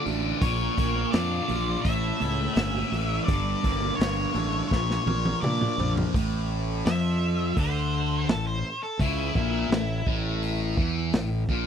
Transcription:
Already playing: A3 D4 F4
0.06 A1 D3, open hi-hat, high conga, low conga
0.41 A#1 A#2 C#5, kick, open hi-hat
0.77 A#1 A#3, kick, open hi-hat, low conga
0.95 high conga
1.11 F2 D4 D5, snare, open hi-hat
1.48 A#1 F4, open hi-hat, high conga, low conga
1.81 A1 E5, kick, open hi-hat
1.86 A2
2.20 C#2 E4, open hi-hat, high conga
2.54 G1 C#4 E5, snare, open hi-hat
2.74 high conga
2.92 A1 E3, open hi-hat, low conga
3.24 G1 D5, low conga
3.28 G2, kick, open hi-hat
3.63 G1 A#3, kick, open hi-hat, low conga
3.81 high conga
3.96 G1 C#5
4.00 D4, snare, open hi-hat
4.34 A1 A4, open hi-hat, high conga, low conga
4.68 A#1 A#2 C#5, kick
4.72 snare
4.90 snare
5.06 A#1 A#4, high tom, high conga
5.25 high tom
5.41 A#2 D4 D5, mid tom, high conga
5.61 mid tom, high conga
5.77 A#1 F3, floor tom, low conga
5.96 floor tom, low conga
6.14 A1 A2, kick, open hi-hat
6.85 F2 F3 E5, snare, open hi-hat
7.57 D2 D3 C5, kick, open hi-hat
8.28 A1 A2 A4, snare, open hi-hat
8.47 C5
8.83 A4
9.00 C#2 C#3 E4, kick, open hi-hat
9.35 A#1 A#2 E4, kick
9.69 A1 A2, snare, open hi-hat
10.06 A1 A2, kick
10.43 open hi-hat
10.77 E2 E3, kick
11.13 A1 A2, snare, open hi-hat
11.49 A#1 A#2, kick

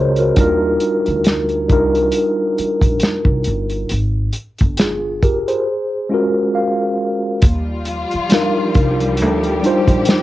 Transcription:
Already playing: C#2 G#3 C#4 F4 F#4 G#4 A#4 C5 C#5 D#5
0.16 F#4 A#4, closed hi-hat
0.36 D#2 G3 D4 D#4 F4, kick, closed hi-hat
0.41 A#4
0.80 closed hi-hat
1.06 D2, closed hi-hat
1.24 snare, closed hi-hat
1.49 closed hi-hat
1.68 C2 G3 D4 D#4 F4, kick, closed hi-hat
1.73 A#4
1.95 closed hi-hat
2.12 closed hi-hat
2.58 muted upright bass stroke, closed hi-hat
2.81 A#1, kick, closed hi-hat
3.00 snare, closed hi-hat
3.25 C2, kick
3.44 G1, closed hi-hat
3.70 closed hi-hat
3.89 G#1, closed hi-hat
4.33 closed hi-hat
4.59 G1, kick, closed hi-hat
4.77 F4 G#4, snare, closed hi-hat
5.23 G4 A#4, kick, closed hi-hat
5.48 G#4 C5, closed hi-hat
6.09 G#3 C#4 F4 F#4
6.14 A#4
6.55 F5
7.42 D#2 F3 G3 F4, kick, closed hi-hat
7.85 closed hi-hat
8.11 muted upright bass stroke, closed hi-hat
8.29 G3 D4 D#4 F4, snare, closed hi-hat
8.34 A#4
8.75 C2, kick, closed hi-hat
9.00 closed hi-hat
9.17 G4, closed hi-hat
9.22 D2
9.43 closed hi-hat
9.62 G3 D4 D#4 F4, closed hi-hat
9.67 C5
9.88 A#1, kick, closed hi-hat
10.05 snare, closed hi-hat

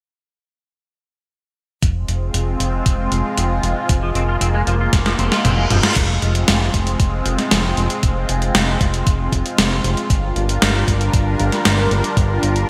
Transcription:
1.83 F1 G#3 C4 F4, kick, closed hi-hat
2.08 F1, closed hi-hat
2.34 F1, closed hi-hat
2.60 F1, closed hi-hat
2.86 F1, kick, closed hi-hat
3.12 F1, closed hi-hat
3.38 F1, closed hi-hat
3.63 F1, closed hi-hat
3.89 F1 A#3, kick, closed hi-hat
4.03 F3
4.15 F1 C4, closed hi-hat
4.29 F4
4.41 F1 C4, closed hi-hat
4.54 G#3
4.67 F1 F3, closed hi-hat
4.80 F4
4.93 F1, kick, snare, closed hi-hat, reverse cymbal
5.06 F3, snare
5.19 F1 C4, closed hi-hat
5.32 F4, snare
5.45 F1 C4, closed hi-hat, mid tom
5.58 G#3
5.70 F1 F3, closed hi-hat, mid tom
5.83 F4, snare
5.96 F1 G#3 C4 F4, kick, closed hi-hat, crash
6.22 F1, closed hi-hat
6.35 closed hi-hat
6.48 F1, snare, closed hi-hat
6.74 F1, kick, closed hi-hat
6.87 closed hi-hat
7.00 F1, kick, closed hi-hat
7.26 F1, closed hi-hat
7.39 snare, closed hi-hat
7.51 F1, snare, closed hi-hat
7.77 F1, closed hi-hat
7.90 closed hi-hat
8.03 F1, kick, closed hi-hat
8.29 F1, closed hi-hat
8.42 closed hi-hat
8.55 F1, snare, closed hi-hat
8.81 F1, kick, closed hi-hat
8.94 closed hi-hat
9.07 F1, kick, closed hi-hat
9.32 F1, kick, closed hi-hat
9.46 closed hi-hat
9.58 F1, snare, closed hi-hat
9.84 F1, closed hi-hat
9.97 closed hi-hat
10.10 G1 G3 D4 A#4, kick, closed hi-hat
10.36 G1, closed hi-hat
10.49 closed hi-hat
10.62 G1, snare, closed hi-hat
10.88 G1, kick, closed hi-hat
11.01 closed hi-hat
11.13 G1, kick, closed hi-hat
11.40 G1, closed hi-hat
11.52 snare, closed hi-hat
11.65 G1, snare, closed hi-hat
11.91 G1, closed hi-hat
12.04 closed hi-hat
12.17 G1, kick, closed hi-hat
12.43 G1, closed hi-hat
12.56 closed hi-hat

